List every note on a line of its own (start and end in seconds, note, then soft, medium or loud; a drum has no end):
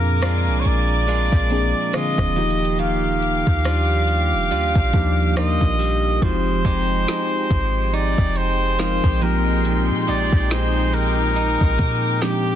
0.00 0.49 F2 loud
0.00 2.46 A#2 medium
0.00 0.22 F3 medium
0.00 0.66 F3 medium
0.00 0.66 A#3 medium
0.00 0.66 C4 medium
0.00 0.67 D4 medium
0.00 0.67 G#4 medium
0.00 0.61 A#4 medium
0.00 2.33 A#4 medium
0.00 2.25 F5 medium
0.00 2.33 G#5 medium
0.00 2.33 D6 medium
0.22 1.06 G#3 medium
0.22 1.08 D4 medium
0.22 1.08 F4 medium
0.22 cross-stick loud
0.22 closed hi-hat medium
0.47 0.64 C2 loud
0.60 0.68 C#5 medium
0.65 1.30 A#1 loud
0.65 1.97 D5 loud
0.65 closed hi-hat medium
1.08 1.92 G#3 medium
1.08 1.96 D4 medium
1.08 1.94 F4 medium
1.08 closed hi-hat medium
1.32 1.74 A#1 loud
1.32 kick medium
1.50 1.84 F3 medium
1.50 1.85 A#3 medium
1.50 1.85 C4 medium
1.50 1.85 D4 medium
1.50 1.86 G#4 medium
1.50 closed hi-hat medium
1.93 2.37 D3 medium
1.93 2.34 F3 medium
1.93 2.46 G#3 medium
1.93 2.35 A#3 medium
1.93 2.37 C4 medium
1.93 2.82 F4 medium
1.93 2.37 G#4 medium
1.93 2.80 D#5 loud
1.93 cross-stick loud
1.93 closed hi-hat medium
2.18 3.43 D#1 loud
2.18 kick medium
2.18 cross-stick medium
2.36 2.79 D#3 medium
2.36 3.74 F3 medium
2.36 3.75 A#3 medium
2.36 3.75 D#4 medium
2.36 3.75 F4 medium
2.36 6.18 G4 medium
2.36 3.76 G4 medium
2.36 6.18 F5 medium
2.36 6.18 D6 medium
2.36 closed hi-hat soft
2.51 closed hi-hat medium
2.65 closed hi-hat medium
2.79 6.25 D#3 medium
2.79 5.25 F5 medium
2.79 5.33 F5 loud
2.79 closed hi-hat medium
3.22 closed hi-hat medium
3.47 4.35 D#2 loud
3.47 kick medium
3.65 4.50 G3 medium
3.65 4.50 D4 medium
3.65 4.52 F4 medium
3.65 cross-stick loud
3.65 closed hi-hat medium
4.08 closed hi-hat medium
4.33 4.52 F1 medium
4.51 4.74 D#2 medium
4.51 5.36 G3 medium
4.51 5.37 D4 medium
4.51 5.37 F4 medium
4.51 closed hi-hat medium
4.75 4.93 A#1 loud
4.75 kick medium
4.93 5.59 D#2 loud
4.93 5.27 F3 medium
4.93 5.28 A#3 medium
4.93 5.28 D4 medium
4.93 5.28 D#4 medium
4.93 5.28 G4 loud
4.93 kick medium
4.93 closed hi-hat medium
5.36 6.04 F3 medium
5.36 5.79 G3 medium
5.36 6.04 A#3 medium
5.36 6.05 D#4 medium
5.36 6.05 F4 medium
5.36 6.65 F4 medium
5.36 6.05 A#4 medium
5.36 6.24 D#5 loud
5.36 cross-stick loud
5.36 closed hi-hat medium
5.61 6.20 A#1 loud
5.61 kick medium
5.79 6.22 G3 medium
5.79 open hi-hat medium
6.21 6.63 F1 loud
6.21 7.51 F3 medium
6.21 9.72 F3 medium
6.21 7.52 G#3 medium
6.21 12.55 G#3 medium
6.21 7.52 C4 medium
6.21 7.52 D#4 medium
6.21 6.31 F#4 medium
6.21 7.96 C5 medium
6.21 12.55 G5 medium
6.21 kick loud
6.21 closed hi-hat medium
6.31 7.56 G4 medium
6.65 7.06 F1 loud
6.65 7.07 G#3 medium
6.65 7.93 D#4 medium
6.65 8.79 G4 medium
6.65 kick medium
6.65 closed hi-hat medium
7.07 9.68 G#3 medium
7.07 9.53 D#4 medium
7.07 snare loud
7.07 closed hi-hat medium
7.50 8.16 G#1 loud
7.50 kick medium
7.50 closed hi-hat medium
7.94 10.08 D#4 medium
7.94 8.39 D5 medium
7.94 closed hi-hat medium
8.18 9.01 F1 loud
8.18 kick medium
8.36 9.24 C5 loud
8.36 closed hi-hat medium
8.79 9.20 F3 medium
8.79 9.21 G#3 medium
8.79 9.22 C4 medium
8.79 9.22 D#4 medium
8.79 9.04 F4 medium
8.79 9.23 A#4 medium
8.79 snare loud
8.79 closed hi-hat medium
9.04 9.91 A#1 loud
9.04 9.32 G4 medium
9.04 kick loud
9.22 9.64 A#2 medium
9.22 10.60 F3 medium
9.22 10.61 G#3 medium
9.22 10.61 C4 medium
9.22 12.55 D#4 medium
9.22 10.61 D#4 medium
9.22 10.62 G4 medium
9.22 9.84 A#4 medium
9.22 10.92 C6 medium
9.22 closed hi-hat medium
9.65 12.55 A#2 medium
9.65 closed hi-hat medium
9.90 10.09 A#2 medium
10.07 10.31 A#1 medium
10.07 10.49 G#3 medium
10.07 11.35 D#4 medium
10.07 12.21 G4 medium
10.07 10.52 D5 medium
10.07 closed hi-hat medium
10.33 11.57 A#1 loud
10.33 kick medium
10.50 12.55 G#3 medium
10.50 10.95 C5 loud
10.50 snare loud
10.50 closed hi-hat medium
10.93 12.24 A#4 loud
10.93 12.55 D6 medium
10.93 closed hi-hat medium
11.36 12.55 D#4 medium
11.36 closed hi-hat medium
11.61 11.78 A#1 loud
11.61 kick medium
11.78 12.55 A#2 loud
11.78 kick medium
11.78 closed hi-hat medium
12.22 12.55 F3 medium
12.22 12.55 G#3 medium
12.22 12.55 C4 medium
12.22 12.30 D4 medium
12.22 12.55 G4 medium
12.22 snare loud
12.22 closed hi-hat medium
12.30 12.55 D#4 medium